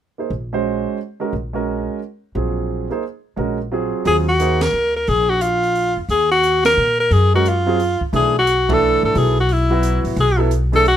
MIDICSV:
0, 0, Header, 1, 6, 480
1, 0, Start_track
1, 0, Tempo, 339943
1, 1401, Time_signature, 3, 2, 24, 8
1, 15485, End_track
2, 0, Start_track
2, 0, Title_t, "Alto saxophone"
2, 0, Program_c, 0, 65
2, 5754, Note_on_c, 0, 68, 87
2, 5887, Note_off_c, 0, 68, 0
2, 6054, Note_on_c, 0, 66, 92
2, 6532, Note_on_c, 0, 70, 95
2, 6553, Note_off_c, 0, 66, 0
2, 7003, Note_off_c, 0, 70, 0
2, 7010, Note_on_c, 0, 70, 85
2, 7188, Note_on_c, 0, 68, 93
2, 7209, Note_off_c, 0, 70, 0
2, 7481, Note_on_c, 0, 66, 90
2, 7503, Note_off_c, 0, 68, 0
2, 7654, Note_on_c, 0, 65, 94
2, 7675, Note_off_c, 0, 66, 0
2, 8438, Note_off_c, 0, 65, 0
2, 8624, Note_on_c, 0, 68, 94
2, 8902, Note_off_c, 0, 68, 0
2, 8916, Note_on_c, 0, 66, 101
2, 9361, Note_off_c, 0, 66, 0
2, 9404, Note_on_c, 0, 70, 97
2, 9845, Note_off_c, 0, 70, 0
2, 9889, Note_on_c, 0, 70, 88
2, 10070, Note_on_c, 0, 68, 90
2, 10091, Note_off_c, 0, 70, 0
2, 10365, Note_off_c, 0, 68, 0
2, 10387, Note_on_c, 0, 66, 83
2, 10573, Note_on_c, 0, 65, 83
2, 10595, Note_off_c, 0, 66, 0
2, 11336, Note_off_c, 0, 65, 0
2, 11519, Note_on_c, 0, 68, 84
2, 11789, Note_off_c, 0, 68, 0
2, 11845, Note_on_c, 0, 66, 93
2, 12336, Note_on_c, 0, 69, 97
2, 12357, Note_off_c, 0, 66, 0
2, 12777, Note_off_c, 0, 69, 0
2, 12785, Note_on_c, 0, 69, 78
2, 12957, Note_on_c, 0, 68, 86
2, 12978, Note_off_c, 0, 69, 0
2, 13247, Note_off_c, 0, 68, 0
2, 13278, Note_on_c, 0, 66, 83
2, 13451, Note_on_c, 0, 64, 85
2, 13472, Note_off_c, 0, 66, 0
2, 14213, Note_off_c, 0, 64, 0
2, 14410, Note_on_c, 0, 68, 76
2, 14673, Note_off_c, 0, 68, 0
2, 15189, Note_on_c, 0, 69, 107
2, 15328, Note_off_c, 0, 69, 0
2, 15362, Note_on_c, 0, 66, 102
2, 15485, Note_off_c, 0, 66, 0
2, 15485, End_track
3, 0, Start_track
3, 0, Title_t, "Upright piano"
3, 0, Program_c, 1, 0
3, 257, Note_on_c, 1, 58, 39
3, 269, Note_on_c, 1, 63, 38
3, 274, Note_on_c, 1, 68, 39
3, 281, Note_on_c, 1, 72, 46
3, 417, Note_off_c, 1, 58, 0
3, 423, Note_off_c, 1, 63, 0
3, 426, Note_off_c, 1, 68, 0
3, 429, Note_off_c, 1, 72, 0
3, 744, Note_on_c, 1, 56, 59
3, 747, Note_on_c, 1, 61, 55
3, 760, Note_on_c, 1, 66, 53
3, 763, Note_on_c, 1, 72, 67
3, 1365, Note_off_c, 1, 56, 0
3, 1366, Note_off_c, 1, 61, 0
3, 1372, Note_off_c, 1, 66, 0
3, 1374, Note_off_c, 1, 72, 0
3, 1693, Note_on_c, 1, 56, 58
3, 1700, Note_on_c, 1, 61, 47
3, 1711, Note_on_c, 1, 70, 59
3, 1712, Note_on_c, 1, 66, 47
3, 1856, Note_off_c, 1, 56, 0
3, 1860, Note_off_c, 1, 61, 0
3, 1865, Note_off_c, 1, 70, 0
3, 1866, Note_off_c, 1, 66, 0
3, 2164, Note_on_c, 1, 56, 55
3, 2174, Note_on_c, 1, 61, 50
3, 2178, Note_on_c, 1, 66, 48
3, 2193, Note_on_c, 1, 70, 61
3, 2795, Note_off_c, 1, 56, 0
3, 2800, Note_off_c, 1, 61, 0
3, 2803, Note_off_c, 1, 66, 0
3, 2810, Note_off_c, 1, 70, 0
3, 3317, Note_on_c, 1, 54, 50
3, 3326, Note_on_c, 1, 60, 40
3, 3337, Note_on_c, 1, 65, 37
3, 3341, Note_on_c, 1, 68, 48
3, 4049, Note_off_c, 1, 54, 0
3, 4053, Note_off_c, 1, 60, 0
3, 4059, Note_off_c, 1, 65, 0
3, 4061, Note_off_c, 1, 68, 0
3, 4097, Note_on_c, 1, 58, 52
3, 4110, Note_on_c, 1, 63, 51
3, 4113, Note_on_c, 1, 68, 49
3, 4124, Note_on_c, 1, 72, 55
3, 4260, Note_off_c, 1, 58, 0
3, 4266, Note_off_c, 1, 63, 0
3, 4268, Note_off_c, 1, 68, 0
3, 4273, Note_off_c, 1, 72, 0
3, 4750, Note_on_c, 1, 56, 52
3, 4759, Note_on_c, 1, 61, 49
3, 4769, Note_on_c, 1, 66, 48
3, 4779, Note_on_c, 1, 70, 55
3, 5036, Note_off_c, 1, 56, 0
3, 5040, Note_off_c, 1, 61, 0
3, 5045, Note_off_c, 1, 66, 0
3, 5050, Note_off_c, 1, 70, 0
3, 5246, Note_on_c, 1, 54, 54
3, 5259, Note_on_c, 1, 60, 46
3, 5261, Note_on_c, 1, 65, 48
3, 5273, Note_on_c, 1, 68, 61
3, 5695, Note_off_c, 1, 54, 0
3, 5703, Note_off_c, 1, 60, 0
3, 5711, Note_off_c, 1, 65, 0
3, 5716, Note_off_c, 1, 68, 0
3, 5716, Note_on_c, 1, 54, 60
3, 5724, Note_on_c, 1, 60, 54
3, 5732, Note_on_c, 1, 65, 52
3, 5737, Note_on_c, 1, 68, 63
3, 5999, Note_off_c, 1, 54, 0
3, 6003, Note_off_c, 1, 60, 0
3, 6007, Note_off_c, 1, 65, 0
3, 6009, Note_off_c, 1, 68, 0
3, 6211, Note_on_c, 1, 58, 61
3, 6219, Note_on_c, 1, 63, 49
3, 6226, Note_on_c, 1, 68, 52
3, 6234, Note_on_c, 1, 72, 59
3, 6486, Note_off_c, 1, 58, 0
3, 6490, Note_off_c, 1, 63, 0
3, 6494, Note_off_c, 1, 68, 0
3, 6498, Note_off_c, 1, 72, 0
3, 10364, Note_on_c, 1, 56, 58
3, 10372, Note_on_c, 1, 61, 55
3, 10379, Note_on_c, 1, 66, 58
3, 10383, Note_on_c, 1, 70, 66
3, 10512, Note_off_c, 1, 56, 0
3, 10516, Note_off_c, 1, 61, 0
3, 10520, Note_off_c, 1, 66, 0
3, 10521, Note_off_c, 1, 70, 0
3, 10819, Note_on_c, 1, 54, 67
3, 10826, Note_on_c, 1, 60, 60
3, 10835, Note_on_c, 1, 65, 56
3, 10849, Note_on_c, 1, 68, 71
3, 10979, Note_off_c, 1, 54, 0
3, 10983, Note_off_c, 1, 60, 0
3, 10987, Note_off_c, 1, 65, 0
3, 10994, Note_off_c, 1, 68, 0
3, 11475, Note_on_c, 1, 52, 58
3, 11480, Note_on_c, 1, 57, 51
3, 11488, Note_on_c, 1, 62, 51
3, 11489, Note_on_c, 1, 68, 62
3, 11756, Note_off_c, 1, 52, 0
3, 11759, Note_off_c, 1, 57, 0
3, 11763, Note_off_c, 1, 62, 0
3, 11763, Note_off_c, 1, 68, 0
3, 12265, Note_on_c, 1, 52, 72
3, 12269, Note_on_c, 1, 57, 59
3, 12280, Note_on_c, 1, 62, 69
3, 12290, Note_on_c, 1, 69, 79
3, 12884, Note_off_c, 1, 52, 0
3, 12886, Note_off_c, 1, 57, 0
3, 12891, Note_off_c, 1, 62, 0
3, 12896, Note_off_c, 1, 69, 0
3, 12921, Note_on_c, 1, 59, 53
3, 12922, Note_on_c, 1, 54, 52
3, 12930, Note_on_c, 1, 64, 53
3, 12941, Note_on_c, 1, 69, 63
3, 13198, Note_off_c, 1, 59, 0
3, 13199, Note_off_c, 1, 54, 0
3, 13203, Note_off_c, 1, 64, 0
3, 13208, Note_off_c, 1, 69, 0
3, 13699, Note_on_c, 1, 54, 67
3, 13705, Note_on_c, 1, 59, 66
3, 13707, Note_on_c, 1, 64, 70
3, 13722, Note_on_c, 1, 66, 81
3, 14320, Note_off_c, 1, 54, 0
3, 14323, Note_off_c, 1, 59, 0
3, 14324, Note_off_c, 1, 64, 0
3, 14331, Note_off_c, 1, 66, 0
3, 14649, Note_on_c, 1, 54, 69
3, 14657, Note_on_c, 1, 59, 67
3, 14662, Note_on_c, 1, 64, 66
3, 14668, Note_on_c, 1, 69, 80
3, 14812, Note_off_c, 1, 54, 0
3, 14816, Note_off_c, 1, 59, 0
3, 14819, Note_off_c, 1, 64, 0
3, 14821, Note_off_c, 1, 69, 0
3, 15141, Note_on_c, 1, 52, 59
3, 15144, Note_on_c, 1, 57, 57
3, 15152, Note_on_c, 1, 62, 59
3, 15161, Note_on_c, 1, 68, 71
3, 15297, Note_off_c, 1, 52, 0
3, 15299, Note_off_c, 1, 57, 0
3, 15303, Note_off_c, 1, 62, 0
3, 15307, Note_off_c, 1, 68, 0
3, 15485, End_track
4, 0, Start_track
4, 0, Title_t, "Upright bass"
4, 0, Program_c, 2, 32
4, 429, Note_on_c, 2, 34, 71
4, 1203, Note_off_c, 2, 34, 0
4, 1877, Note_on_c, 2, 34, 64
4, 2647, Note_off_c, 2, 34, 0
4, 3319, Note_on_c, 2, 34, 70
4, 4089, Note_off_c, 2, 34, 0
4, 4762, Note_on_c, 2, 34, 65
4, 5531, Note_off_c, 2, 34, 0
4, 5728, Note_on_c, 2, 39, 82
4, 6630, Note_off_c, 2, 39, 0
4, 6681, Note_on_c, 2, 38, 66
4, 7129, Note_off_c, 2, 38, 0
4, 7173, Note_on_c, 2, 34, 86
4, 8381, Note_off_c, 2, 34, 0
4, 8429, Note_on_c, 2, 40, 59
4, 8584, Note_off_c, 2, 40, 0
4, 8592, Note_on_c, 2, 39, 75
4, 9501, Note_off_c, 2, 39, 0
4, 9562, Note_on_c, 2, 46, 72
4, 10009, Note_off_c, 2, 46, 0
4, 10035, Note_on_c, 2, 42, 80
4, 11250, Note_off_c, 2, 42, 0
4, 11478, Note_on_c, 2, 35, 80
4, 12691, Note_off_c, 2, 35, 0
4, 12751, Note_on_c, 2, 33, 65
4, 12910, Note_off_c, 2, 33, 0
4, 12921, Note_on_c, 2, 35, 87
4, 14132, Note_off_c, 2, 35, 0
4, 14182, Note_on_c, 2, 33, 61
4, 14344, Note_off_c, 2, 33, 0
4, 14351, Note_on_c, 2, 35, 85
4, 15485, Note_off_c, 2, 35, 0
4, 15485, End_track
5, 0, Start_track
5, 0, Title_t, "Muted upright bass strokes"
5, 11314, Note_on_c, 9, 29, 36
5, 11455, Note_off_c, 9, 29, 0
5, 15485, End_track
6, 0, Start_track
6, 0, Title_t, "Drums"
6, 5723, Note_on_c, 9, 46, 39
6, 5864, Note_off_c, 9, 46, 0
6, 6207, Note_on_c, 9, 42, 46
6, 6348, Note_off_c, 9, 42, 0
6, 6511, Note_on_c, 9, 38, 70
6, 6511, Note_on_c, 9, 51, 65
6, 6652, Note_off_c, 9, 38, 0
6, 6652, Note_off_c, 9, 51, 0
6, 7163, Note_on_c, 9, 46, 34
6, 7304, Note_off_c, 9, 46, 0
6, 7641, Note_on_c, 9, 42, 50
6, 7783, Note_off_c, 9, 42, 0
6, 7956, Note_on_c, 9, 46, 32
6, 8097, Note_off_c, 9, 46, 0
6, 8125, Note_on_c, 9, 46, 40
6, 8266, Note_off_c, 9, 46, 0
6, 8604, Note_on_c, 9, 46, 39
6, 8745, Note_off_c, 9, 46, 0
6, 9086, Note_on_c, 9, 42, 45
6, 9227, Note_off_c, 9, 42, 0
6, 9388, Note_on_c, 9, 38, 69
6, 9388, Note_on_c, 9, 51, 64
6, 9529, Note_off_c, 9, 38, 0
6, 9529, Note_off_c, 9, 51, 0
6, 10044, Note_on_c, 9, 46, 36
6, 10185, Note_off_c, 9, 46, 0
6, 10526, Note_on_c, 9, 42, 47
6, 10667, Note_off_c, 9, 42, 0
6, 11008, Note_on_c, 9, 46, 42
6, 11149, Note_off_c, 9, 46, 0
6, 11313, Note_on_c, 9, 36, 54
6, 11454, Note_off_c, 9, 36, 0
6, 11488, Note_on_c, 9, 46, 38
6, 11629, Note_off_c, 9, 46, 0
6, 11959, Note_on_c, 9, 42, 44
6, 12101, Note_off_c, 9, 42, 0
6, 12272, Note_on_c, 9, 36, 77
6, 12277, Note_on_c, 9, 51, 62
6, 12413, Note_off_c, 9, 36, 0
6, 12418, Note_off_c, 9, 51, 0
6, 12925, Note_on_c, 9, 46, 38
6, 13067, Note_off_c, 9, 46, 0
6, 13398, Note_on_c, 9, 46, 43
6, 13539, Note_off_c, 9, 46, 0
6, 13879, Note_on_c, 9, 42, 56
6, 14020, Note_off_c, 9, 42, 0
6, 14186, Note_on_c, 9, 46, 41
6, 14327, Note_off_c, 9, 46, 0
6, 14356, Note_on_c, 9, 46, 42
6, 14497, Note_off_c, 9, 46, 0
6, 14840, Note_on_c, 9, 42, 50
6, 14981, Note_off_c, 9, 42, 0
6, 15154, Note_on_c, 9, 46, 35
6, 15296, Note_off_c, 9, 46, 0
6, 15325, Note_on_c, 9, 46, 42
6, 15466, Note_off_c, 9, 46, 0
6, 15485, End_track
0, 0, End_of_file